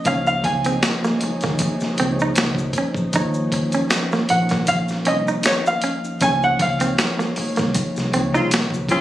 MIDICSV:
0, 0, Header, 1, 10, 480
1, 0, Start_track
1, 0, Tempo, 769231
1, 36, Time_signature, 4, 2, 24, 8
1, 5622, End_track
2, 0, Start_track
2, 0, Title_t, "Grand piano"
2, 0, Program_c, 0, 0
2, 40, Note_on_c, 0, 77, 90
2, 160, Note_off_c, 0, 77, 0
2, 170, Note_on_c, 0, 77, 95
2, 271, Note_off_c, 0, 77, 0
2, 278, Note_on_c, 0, 80, 93
2, 1212, Note_off_c, 0, 80, 0
2, 2682, Note_on_c, 0, 78, 84
2, 2922, Note_on_c, 0, 77, 92
2, 2926, Note_off_c, 0, 78, 0
2, 2975, Note_off_c, 0, 77, 0
2, 3168, Note_on_c, 0, 75, 82
2, 3221, Note_off_c, 0, 75, 0
2, 3409, Note_on_c, 0, 73, 84
2, 3440, Note_off_c, 0, 73, 0
2, 3541, Note_on_c, 0, 77, 94
2, 3888, Note_on_c, 0, 80, 104
2, 3895, Note_off_c, 0, 77, 0
2, 4001, Note_off_c, 0, 80, 0
2, 4017, Note_on_c, 0, 78, 96
2, 4126, Note_off_c, 0, 78, 0
2, 4130, Note_on_c, 0, 77, 90
2, 5058, Note_off_c, 0, 77, 0
2, 5622, End_track
3, 0, Start_track
3, 0, Title_t, "Tine electric piano"
3, 0, Program_c, 1, 4
3, 0, Control_c, 1, 64, 127
3, 30, Note_on_c, 1, 53, 94
3, 39, Note_on_c, 1, 58, 85
3, 44, Note_on_c, 1, 63, 86
3, 45, Control_c, 1, 64, 0
3, 51, Note_on_c, 1, 68, 90
3, 59, Note_on_c, 1, 73, 104
3, 164, Control_c, 1, 64, 127
3, 342, Note_off_c, 1, 53, 0
3, 346, Note_off_c, 1, 58, 0
3, 349, Note_off_c, 1, 63, 0
3, 352, Note_off_c, 1, 68, 0
3, 356, Note_off_c, 1, 73, 0
3, 397, Note_on_c, 1, 53, 68
3, 405, Note_on_c, 1, 58, 63
3, 411, Note_on_c, 1, 63, 64
3, 420, Note_on_c, 1, 68, 64
3, 427, Note_on_c, 1, 75, 76
3, 701, Note_off_c, 1, 53, 0
3, 705, Note_off_c, 1, 58, 0
3, 708, Note_off_c, 1, 63, 0
3, 712, Note_off_c, 1, 68, 0
3, 716, Note_off_c, 1, 75, 0
3, 751, Note_on_c, 1, 53, 70
3, 758, Note_on_c, 1, 58, 65
3, 765, Note_on_c, 1, 63, 65
3, 775, Note_on_c, 1, 68, 64
3, 780, Note_on_c, 1, 73, 78
3, 1165, Note_off_c, 1, 53, 0
3, 1168, Note_off_c, 1, 58, 0
3, 1171, Note_off_c, 1, 63, 0
3, 1176, Note_off_c, 1, 68, 0
3, 1179, Note_off_c, 1, 73, 0
3, 1230, Note_on_c, 1, 53, 81
3, 1238, Note_on_c, 1, 58, 68
3, 1244, Note_on_c, 1, 63, 68
3, 1253, Note_on_c, 1, 68, 70
3, 1258, Note_on_c, 1, 72, 72
3, 1291, Note_off_c, 1, 72, 0
3, 1300, Note_on_c, 1, 73, 84
3, 1849, Note_off_c, 1, 53, 0
3, 1853, Note_off_c, 1, 58, 0
3, 1857, Note_off_c, 1, 63, 0
3, 1861, Note_off_c, 1, 68, 0
3, 1884, Note_off_c, 1, 73, 0
3, 1949, Note_on_c, 1, 53, 117
3, 1956, Note_on_c, 1, 58, 102
3, 1963, Note_on_c, 1, 63, 104
3, 1965, Control_c, 1, 64, 0
3, 1971, Note_on_c, 1, 68, 108
3, 1977, Note_on_c, 1, 73, 123
3, 2088, Control_c, 1, 64, 127
3, 2569, Note_off_c, 1, 53, 0
3, 2573, Note_off_c, 1, 58, 0
3, 2576, Note_off_c, 1, 63, 0
3, 2580, Note_off_c, 1, 68, 0
3, 2583, Note_off_c, 1, 73, 0
3, 2671, Note_on_c, 1, 53, 70
3, 2678, Note_on_c, 1, 58, 67
3, 2686, Note_on_c, 1, 63, 65
3, 2693, Note_on_c, 1, 68, 65
3, 2700, Note_on_c, 1, 70, 80
3, 3084, Note_off_c, 1, 53, 0
3, 3088, Note_off_c, 1, 58, 0
3, 3092, Note_off_c, 1, 63, 0
3, 3095, Note_off_c, 1, 68, 0
3, 3099, Note_off_c, 1, 70, 0
3, 3150, Note_on_c, 1, 53, 65
3, 3158, Note_on_c, 1, 58, 59
3, 3166, Note_on_c, 1, 63, 56
3, 3172, Note_on_c, 1, 68, 63
3, 3180, Note_on_c, 1, 75, 71
3, 3770, Note_off_c, 1, 53, 0
3, 3774, Note_off_c, 1, 58, 0
3, 3777, Note_off_c, 1, 63, 0
3, 3780, Note_off_c, 1, 68, 0
3, 3784, Note_off_c, 1, 75, 0
3, 3874, Note_on_c, 1, 53, 95
3, 3879, Note_on_c, 1, 58, 91
3, 3884, Control_c, 1, 64, 0
3, 3886, Note_on_c, 1, 63, 92
3, 3894, Note_on_c, 1, 68, 86
3, 3902, Note_on_c, 1, 73, 103
3, 3998, Control_c, 1, 64, 127
3, 4184, Note_off_c, 1, 53, 0
3, 4187, Note_off_c, 1, 58, 0
3, 4190, Note_off_c, 1, 63, 0
3, 4194, Note_off_c, 1, 68, 0
3, 4198, Note_off_c, 1, 73, 0
3, 4242, Note_on_c, 1, 53, 74
3, 4247, Note_on_c, 1, 58, 64
3, 4256, Note_on_c, 1, 63, 64
3, 4262, Note_on_c, 1, 68, 65
3, 4270, Note_on_c, 1, 73, 80
3, 4543, Note_off_c, 1, 53, 0
3, 4546, Note_off_c, 1, 58, 0
3, 4551, Note_off_c, 1, 63, 0
3, 4553, Note_off_c, 1, 68, 0
3, 4557, Note_off_c, 1, 73, 0
3, 4592, Note_on_c, 1, 53, 73
3, 4599, Note_on_c, 1, 58, 64
3, 4605, Note_on_c, 1, 63, 68
3, 4612, Note_on_c, 1, 68, 67
3, 4621, Note_on_c, 1, 73, 80
3, 5005, Note_off_c, 1, 53, 0
3, 5008, Note_off_c, 1, 58, 0
3, 5012, Note_off_c, 1, 63, 0
3, 5015, Note_off_c, 1, 68, 0
3, 5020, Note_off_c, 1, 73, 0
3, 5069, Note_on_c, 1, 53, 74
3, 5077, Note_on_c, 1, 58, 71
3, 5085, Note_on_c, 1, 63, 71
3, 5091, Note_on_c, 1, 68, 68
3, 5099, Note_on_c, 1, 73, 84
3, 5622, Note_off_c, 1, 53, 0
3, 5622, Note_off_c, 1, 58, 0
3, 5622, Note_off_c, 1, 63, 0
3, 5622, Note_off_c, 1, 68, 0
3, 5622, Note_off_c, 1, 73, 0
3, 5622, End_track
4, 0, Start_track
4, 0, Title_t, "Clean electric guitar"
4, 0, Program_c, 2, 27
4, 47, Note_on_c, 2, 61, 87
4, 139, Note_off_c, 2, 61, 0
4, 413, Note_on_c, 2, 60, 72
4, 494, Note_off_c, 2, 60, 0
4, 652, Note_on_c, 2, 58, 77
4, 733, Note_off_c, 2, 58, 0
4, 897, Note_on_c, 2, 58, 69
4, 976, Note_off_c, 2, 58, 0
4, 1246, Note_on_c, 2, 60, 78
4, 1338, Note_off_c, 2, 60, 0
4, 1384, Note_on_c, 2, 63, 81
4, 1461, Note_off_c, 2, 63, 0
4, 1735, Note_on_c, 2, 61, 76
4, 1824, Note_off_c, 2, 61, 0
4, 1969, Note_on_c, 2, 63, 88
4, 2060, Note_off_c, 2, 63, 0
4, 2337, Note_on_c, 2, 61, 72
4, 2416, Note_off_c, 2, 61, 0
4, 2578, Note_on_c, 2, 58, 81
4, 2657, Note_off_c, 2, 58, 0
4, 2816, Note_on_c, 2, 58, 74
4, 2896, Note_off_c, 2, 58, 0
4, 3162, Note_on_c, 2, 61, 79
4, 3256, Note_off_c, 2, 61, 0
4, 3297, Note_on_c, 2, 63, 80
4, 3376, Note_off_c, 2, 63, 0
4, 3642, Note_on_c, 2, 61, 76
4, 3736, Note_off_c, 2, 61, 0
4, 3883, Note_on_c, 2, 61, 85
4, 3976, Note_off_c, 2, 61, 0
4, 4250, Note_on_c, 2, 60, 73
4, 4332, Note_off_c, 2, 60, 0
4, 4488, Note_on_c, 2, 58, 73
4, 4571, Note_off_c, 2, 58, 0
4, 4726, Note_on_c, 2, 58, 70
4, 4809, Note_off_c, 2, 58, 0
4, 5078, Note_on_c, 2, 60, 79
4, 5174, Note_off_c, 2, 60, 0
4, 5207, Note_on_c, 2, 63, 88
4, 5290, Note_off_c, 2, 63, 0
4, 5564, Note_on_c, 2, 61, 70
4, 5622, Note_off_c, 2, 61, 0
4, 5622, End_track
5, 0, Start_track
5, 0, Title_t, "Saxophone section"
5, 0, Program_c, 3, 65
5, 5203, Note_on_c, 3, 49, 63
5, 5204, Note_on_c, 3, 60, 67
5, 5204, Note_on_c, 3, 65, 74
5, 5299, Note_off_c, 3, 49, 0
5, 5299, Note_off_c, 3, 60, 0
5, 5299, Note_off_c, 3, 65, 0
5, 5556, Note_on_c, 3, 60, 76
5, 5556, Note_on_c, 3, 65, 86
5, 5557, Note_on_c, 3, 49, 72
5, 5622, Note_off_c, 3, 49, 0
5, 5622, Note_off_c, 3, 60, 0
5, 5622, Note_off_c, 3, 65, 0
5, 5622, End_track
6, 0, Start_track
6, 0, Title_t, "String section"
6, 0, Program_c, 4, 48
6, 0, Note_on_c, 4, 63, 84
6, 37, Note_on_c, 4, 49, 72
6, 39, Note_on_c, 4, 48, 74
6, 39, Note_on_c, 4, 56, 72
6, 1938, Note_off_c, 4, 48, 0
6, 1938, Note_off_c, 4, 49, 0
6, 1939, Note_off_c, 4, 56, 0
6, 1953, Note_on_c, 4, 51, 76
6, 1953, Note_on_c, 4, 53, 68
6, 1954, Note_on_c, 4, 61, 70
6, 3856, Note_off_c, 4, 51, 0
6, 3856, Note_off_c, 4, 53, 0
6, 3856, Note_off_c, 4, 61, 0
6, 3878, Note_on_c, 4, 53, 74
6, 3878, Note_on_c, 4, 56, 75
6, 5622, Note_off_c, 4, 53, 0
6, 5622, Note_off_c, 4, 56, 0
6, 5622, Note_off_c, 4, 63, 0
6, 5622, End_track
7, 0, Start_track
7, 0, Title_t, "Fingered electric bass"
7, 0, Program_c, 5, 33
7, 41, Note_on_c, 5, 37, 90
7, 229, Note_off_c, 5, 37, 0
7, 281, Note_on_c, 5, 37, 92
7, 469, Note_off_c, 5, 37, 0
7, 902, Note_on_c, 5, 39, 74
7, 984, Note_off_c, 5, 39, 0
7, 1249, Note_on_c, 5, 37, 89
7, 1434, Note_off_c, 5, 37, 0
7, 1489, Note_on_c, 5, 37, 94
7, 1674, Note_off_c, 5, 37, 0
7, 1844, Note_on_c, 5, 34, 87
7, 1933, Note_off_c, 5, 34, 0
7, 1964, Note_on_c, 5, 39, 104
7, 2341, Note_off_c, 5, 39, 0
7, 2690, Note_on_c, 5, 34, 87
7, 3170, Note_off_c, 5, 34, 0
7, 3170, Note_on_c, 5, 36, 87
7, 3355, Note_off_c, 5, 36, 0
7, 3884, Note_on_c, 5, 37, 94
7, 4071, Note_off_c, 5, 37, 0
7, 4121, Note_on_c, 5, 37, 86
7, 4309, Note_off_c, 5, 37, 0
7, 4744, Note_on_c, 5, 36, 79
7, 4825, Note_off_c, 5, 36, 0
7, 4977, Note_on_c, 5, 36, 87
7, 5061, Note_off_c, 5, 36, 0
7, 5089, Note_on_c, 5, 37, 95
7, 5217, Note_off_c, 5, 37, 0
7, 5217, Note_on_c, 5, 36, 84
7, 5402, Note_off_c, 5, 36, 0
7, 5437, Note_on_c, 5, 37, 80
7, 5550, Note_off_c, 5, 37, 0
7, 5550, Note_on_c, 5, 34, 75
7, 5622, Note_off_c, 5, 34, 0
7, 5622, End_track
8, 0, Start_track
8, 0, Title_t, "Muted clean electric guitar strokes"
8, 288, Note_on_c, 9, 29, 41
8, 350, Note_off_c, 9, 29, 0
8, 771, Note_on_c, 9, 29, 43
8, 834, Note_off_c, 9, 29, 0
8, 1008, Note_on_c, 9, 29, 42
8, 1071, Note_off_c, 9, 29, 0
8, 2207, Note_on_c, 9, 29, 44
8, 2270, Note_off_c, 9, 29, 0
8, 2685, Note_on_c, 9, 29, 44
8, 2748, Note_off_c, 9, 29, 0
8, 2925, Note_on_c, 9, 29, 44
8, 2987, Note_off_c, 9, 29, 0
8, 4124, Note_on_c, 9, 29, 42
8, 4187, Note_off_c, 9, 29, 0
8, 4603, Note_on_c, 9, 29, 43
8, 4665, Note_off_c, 9, 29, 0
8, 4837, Note_on_c, 9, 29, 42
8, 4899, Note_off_c, 9, 29, 0
8, 5622, End_track
9, 0, Start_track
9, 0, Title_t, "Muted fingered electric bass strokes"
9, 769, Note_on_c, 9, 29, 46
9, 831, Note_off_c, 9, 29, 0
9, 1136, Note_on_c, 9, 29, 44
9, 1198, Note_off_c, 9, 29, 0
9, 4610, Note_on_c, 9, 29, 49
9, 4672, Note_off_c, 9, 29, 0
9, 5622, End_track
10, 0, Start_track
10, 0, Title_t, "Drums"
10, 32, Note_on_c, 9, 42, 71
10, 33, Note_on_c, 9, 82, 60
10, 35, Note_on_c, 9, 36, 105
10, 94, Note_off_c, 9, 42, 0
10, 96, Note_off_c, 9, 82, 0
10, 98, Note_off_c, 9, 36, 0
10, 165, Note_on_c, 9, 82, 44
10, 227, Note_off_c, 9, 82, 0
10, 274, Note_on_c, 9, 36, 99
10, 275, Note_on_c, 9, 42, 63
10, 336, Note_off_c, 9, 36, 0
10, 338, Note_off_c, 9, 42, 0
10, 402, Note_on_c, 9, 42, 51
10, 404, Note_on_c, 9, 82, 45
10, 465, Note_off_c, 9, 42, 0
10, 466, Note_off_c, 9, 82, 0
10, 515, Note_on_c, 9, 42, 57
10, 516, Note_on_c, 9, 26, 87
10, 517, Note_on_c, 9, 38, 108
10, 523, Note_off_c, 9, 26, 0
10, 523, Note_on_c, 9, 26, 60
10, 523, Note_on_c, 9, 82, 59
10, 577, Note_off_c, 9, 42, 0
10, 579, Note_off_c, 9, 38, 0
10, 586, Note_off_c, 9, 26, 0
10, 586, Note_off_c, 9, 82, 0
10, 650, Note_on_c, 9, 82, 46
10, 658, Note_on_c, 9, 38, 35
10, 712, Note_off_c, 9, 82, 0
10, 721, Note_off_c, 9, 38, 0
10, 753, Note_on_c, 9, 42, 73
10, 815, Note_off_c, 9, 42, 0
10, 878, Note_on_c, 9, 42, 42
10, 885, Note_on_c, 9, 82, 39
10, 891, Note_on_c, 9, 38, 34
10, 896, Note_on_c, 9, 36, 86
10, 941, Note_off_c, 9, 42, 0
10, 947, Note_off_c, 9, 82, 0
10, 953, Note_off_c, 9, 38, 0
10, 959, Note_off_c, 9, 36, 0
10, 991, Note_on_c, 9, 42, 90
10, 1000, Note_on_c, 9, 36, 92
10, 1000, Note_on_c, 9, 82, 53
10, 1053, Note_off_c, 9, 42, 0
10, 1062, Note_off_c, 9, 36, 0
10, 1062, Note_off_c, 9, 82, 0
10, 1125, Note_on_c, 9, 82, 43
10, 1136, Note_on_c, 9, 38, 31
10, 1188, Note_off_c, 9, 82, 0
10, 1198, Note_off_c, 9, 38, 0
10, 1234, Note_on_c, 9, 42, 61
10, 1297, Note_off_c, 9, 42, 0
10, 1369, Note_on_c, 9, 82, 38
10, 1432, Note_off_c, 9, 82, 0
10, 1469, Note_on_c, 9, 42, 76
10, 1474, Note_on_c, 9, 26, 61
10, 1474, Note_on_c, 9, 82, 58
10, 1485, Note_off_c, 9, 26, 0
10, 1485, Note_on_c, 9, 26, 91
10, 1485, Note_on_c, 9, 38, 118
10, 1532, Note_off_c, 9, 42, 0
10, 1536, Note_off_c, 9, 82, 0
10, 1547, Note_off_c, 9, 26, 0
10, 1547, Note_off_c, 9, 38, 0
10, 1590, Note_on_c, 9, 36, 89
10, 1611, Note_on_c, 9, 82, 52
10, 1652, Note_off_c, 9, 36, 0
10, 1674, Note_off_c, 9, 82, 0
10, 1704, Note_on_c, 9, 36, 83
10, 1705, Note_on_c, 9, 42, 62
10, 1716, Note_on_c, 9, 82, 46
10, 1767, Note_off_c, 9, 36, 0
10, 1768, Note_off_c, 9, 42, 0
10, 1779, Note_off_c, 9, 82, 0
10, 1838, Note_on_c, 9, 36, 95
10, 1849, Note_on_c, 9, 82, 38
10, 1900, Note_off_c, 9, 36, 0
10, 1911, Note_off_c, 9, 82, 0
10, 1953, Note_on_c, 9, 42, 73
10, 1953, Note_on_c, 9, 82, 62
10, 1958, Note_on_c, 9, 36, 115
10, 2015, Note_off_c, 9, 82, 0
10, 2016, Note_off_c, 9, 42, 0
10, 2020, Note_off_c, 9, 36, 0
10, 2085, Note_on_c, 9, 82, 46
10, 2148, Note_off_c, 9, 82, 0
10, 2195, Note_on_c, 9, 36, 89
10, 2198, Note_on_c, 9, 42, 68
10, 2258, Note_off_c, 9, 36, 0
10, 2260, Note_off_c, 9, 42, 0
10, 2322, Note_on_c, 9, 82, 47
10, 2323, Note_on_c, 9, 42, 49
10, 2385, Note_off_c, 9, 42, 0
10, 2385, Note_off_c, 9, 82, 0
10, 2436, Note_on_c, 9, 42, 59
10, 2438, Note_on_c, 9, 26, 92
10, 2438, Note_on_c, 9, 38, 112
10, 2443, Note_off_c, 9, 26, 0
10, 2443, Note_on_c, 9, 26, 63
10, 2443, Note_on_c, 9, 82, 60
10, 2498, Note_off_c, 9, 42, 0
10, 2500, Note_off_c, 9, 38, 0
10, 2505, Note_off_c, 9, 26, 0
10, 2505, Note_off_c, 9, 82, 0
10, 2570, Note_on_c, 9, 82, 46
10, 2581, Note_on_c, 9, 38, 34
10, 2632, Note_off_c, 9, 82, 0
10, 2643, Note_off_c, 9, 38, 0
10, 2676, Note_on_c, 9, 42, 71
10, 2738, Note_off_c, 9, 42, 0
10, 2802, Note_on_c, 9, 42, 41
10, 2805, Note_on_c, 9, 82, 39
10, 2815, Note_on_c, 9, 38, 34
10, 2820, Note_on_c, 9, 36, 84
10, 2865, Note_off_c, 9, 42, 0
10, 2867, Note_off_c, 9, 82, 0
10, 2877, Note_off_c, 9, 38, 0
10, 2882, Note_off_c, 9, 36, 0
10, 2914, Note_on_c, 9, 42, 92
10, 2920, Note_on_c, 9, 82, 50
10, 2922, Note_on_c, 9, 36, 96
10, 2976, Note_off_c, 9, 42, 0
10, 2982, Note_off_c, 9, 82, 0
10, 2985, Note_off_c, 9, 36, 0
10, 3046, Note_on_c, 9, 82, 44
10, 3062, Note_on_c, 9, 38, 31
10, 3109, Note_off_c, 9, 82, 0
10, 3124, Note_off_c, 9, 38, 0
10, 3153, Note_on_c, 9, 42, 63
10, 3215, Note_off_c, 9, 42, 0
10, 3292, Note_on_c, 9, 82, 40
10, 3354, Note_off_c, 9, 82, 0
10, 3390, Note_on_c, 9, 42, 77
10, 3394, Note_on_c, 9, 26, 64
10, 3394, Note_on_c, 9, 82, 58
10, 3405, Note_off_c, 9, 26, 0
10, 3405, Note_on_c, 9, 26, 92
10, 3405, Note_on_c, 9, 38, 120
10, 3452, Note_off_c, 9, 42, 0
10, 3456, Note_off_c, 9, 82, 0
10, 3467, Note_off_c, 9, 26, 0
10, 3468, Note_off_c, 9, 38, 0
10, 3532, Note_on_c, 9, 82, 58
10, 3595, Note_off_c, 9, 82, 0
10, 3629, Note_on_c, 9, 42, 66
10, 3639, Note_on_c, 9, 82, 45
10, 3691, Note_off_c, 9, 42, 0
10, 3701, Note_off_c, 9, 82, 0
10, 3773, Note_on_c, 9, 82, 43
10, 3835, Note_off_c, 9, 82, 0
10, 3873, Note_on_c, 9, 42, 70
10, 3878, Note_on_c, 9, 36, 119
10, 3879, Note_on_c, 9, 82, 67
10, 3935, Note_off_c, 9, 42, 0
10, 3940, Note_off_c, 9, 36, 0
10, 3941, Note_off_c, 9, 82, 0
10, 4012, Note_on_c, 9, 82, 45
10, 4074, Note_off_c, 9, 82, 0
10, 4115, Note_on_c, 9, 36, 92
10, 4115, Note_on_c, 9, 42, 66
10, 4177, Note_off_c, 9, 36, 0
10, 4178, Note_off_c, 9, 42, 0
10, 4244, Note_on_c, 9, 42, 51
10, 4249, Note_on_c, 9, 82, 49
10, 4306, Note_off_c, 9, 42, 0
10, 4312, Note_off_c, 9, 82, 0
10, 4358, Note_on_c, 9, 42, 56
10, 4359, Note_on_c, 9, 26, 89
10, 4360, Note_on_c, 9, 38, 112
10, 4366, Note_off_c, 9, 26, 0
10, 4366, Note_on_c, 9, 26, 64
10, 4366, Note_on_c, 9, 82, 64
10, 4420, Note_off_c, 9, 42, 0
10, 4422, Note_off_c, 9, 38, 0
10, 4428, Note_off_c, 9, 26, 0
10, 4428, Note_off_c, 9, 82, 0
10, 4492, Note_on_c, 9, 82, 47
10, 4499, Note_on_c, 9, 38, 33
10, 4554, Note_off_c, 9, 82, 0
10, 4561, Note_off_c, 9, 38, 0
10, 4594, Note_on_c, 9, 46, 55
10, 4656, Note_off_c, 9, 46, 0
10, 4719, Note_on_c, 9, 42, 41
10, 4729, Note_on_c, 9, 82, 42
10, 4732, Note_on_c, 9, 38, 32
10, 4738, Note_on_c, 9, 36, 88
10, 4782, Note_off_c, 9, 42, 0
10, 4791, Note_off_c, 9, 82, 0
10, 4794, Note_off_c, 9, 38, 0
10, 4800, Note_off_c, 9, 36, 0
10, 4833, Note_on_c, 9, 42, 93
10, 4841, Note_on_c, 9, 36, 91
10, 4841, Note_on_c, 9, 82, 53
10, 4895, Note_off_c, 9, 42, 0
10, 4903, Note_off_c, 9, 36, 0
10, 4903, Note_off_c, 9, 82, 0
10, 4968, Note_on_c, 9, 82, 44
10, 4978, Note_on_c, 9, 38, 32
10, 5031, Note_off_c, 9, 82, 0
10, 5041, Note_off_c, 9, 38, 0
10, 5076, Note_on_c, 9, 42, 60
10, 5139, Note_off_c, 9, 42, 0
10, 5209, Note_on_c, 9, 82, 39
10, 5271, Note_off_c, 9, 82, 0
10, 5312, Note_on_c, 9, 42, 75
10, 5315, Note_on_c, 9, 26, 58
10, 5315, Note_on_c, 9, 82, 60
10, 5327, Note_off_c, 9, 26, 0
10, 5327, Note_on_c, 9, 26, 89
10, 5327, Note_on_c, 9, 38, 121
10, 5374, Note_off_c, 9, 42, 0
10, 5377, Note_off_c, 9, 82, 0
10, 5390, Note_off_c, 9, 26, 0
10, 5390, Note_off_c, 9, 38, 0
10, 5431, Note_on_c, 9, 36, 87
10, 5452, Note_on_c, 9, 82, 55
10, 5493, Note_off_c, 9, 36, 0
10, 5515, Note_off_c, 9, 82, 0
10, 5545, Note_on_c, 9, 36, 85
10, 5548, Note_on_c, 9, 42, 64
10, 5556, Note_on_c, 9, 82, 49
10, 5607, Note_off_c, 9, 36, 0
10, 5610, Note_off_c, 9, 42, 0
10, 5618, Note_off_c, 9, 82, 0
10, 5622, End_track
0, 0, End_of_file